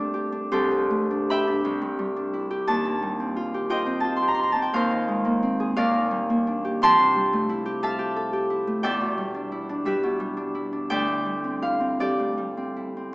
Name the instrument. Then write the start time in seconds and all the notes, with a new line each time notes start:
harp
Already playing: C2 G2 A3 D4 E4 G4 A4 C5 D5 E5 G5
0.14 G4
0.32 D4
0.52 C2 G4 A4 C5
0.71 C3
0.91 A3
1.11 D4
1.29 G4 E5 G5 B5
1.47 D4
1.65 C2
1.81 G2
1.99 G3
2.16 D4
2.33 E4
2.51 G4
2.67 D#2 A5
2.85 A#2
3.02 G3
3.20 C4
3.36 F4
3.54 G4
3.70 F4 C5 D#5 G5
3.86 C4
4.00 F4 A5
4.17 C6
4.22 G4
4.28 A#5
4.34 C6
4.39 F4
4.43 A#5
4.52 C4 A5
4.62 G5
4.73 D#2 A#4 C5 F5
4.91 D#3
5.08 G#3
5.25 A#3
5.43 C4
5.60 G#4
5.76 D#2 A#4 D5 F5
5.94 A#2
6.11 G3
6.30 A#3
6.47 D4
6.65 G4
6.82 F2 G5 A5 C6
7.00 C3
7.16 G3
7.33 A3
7.49 E4
7.66 G4
7.83 A4 E5 F5 A5
7.99 G4
8.16 A4
8.33 G4
8.50 E4
8.67 A3
8.83 E2 D5 E5 G5
9.01 B2
9.18 G3
9.34 D4
9.52 E4
9.69 D4
9.85 G3 G4 B4 E5
10.03 B2
10.20 G3
10.37 D4
10.55 E4
10.73 D4
10.90 D2 D5 E5 G5
11.08 A2
11.25 G3
11.44 C4
11.62 E4 F5
11.80 C4
12.00 G3 G4 A4 D5
12.19 A2
12.37 G3
12.57 C4
12.76 E4
12.97 C4